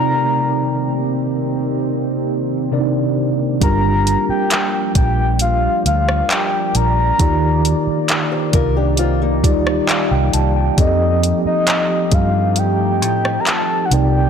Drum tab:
HH |----------------|x-x-x-x-x-x-x-x-|x-x-x-x-x-x-x-x-|x-x-x-x-x-x-x-x-|
CP |----------------|----x-------x---|----x-------x---|----x-------x---|
SD |----------------|-----------r----|-----------r----|-----------r----|
BD |----------------|o-----o---------|o-----o---o-----|o-----o---------|